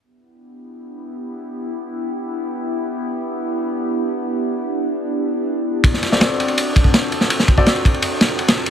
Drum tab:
RD |----------------|----------------|----------------|----------------|
SD |----------------|----------------|----------------|----------------|
BD |----------------|----------------|----------------|----------------|

RD |x-x-x-xxx-x-xxx-|x-x-xxxxx-x-xx-x|
SD |-oooo-------o--o|-o--o-----o--o--|
BD |o---------oo----|--oo--o---------|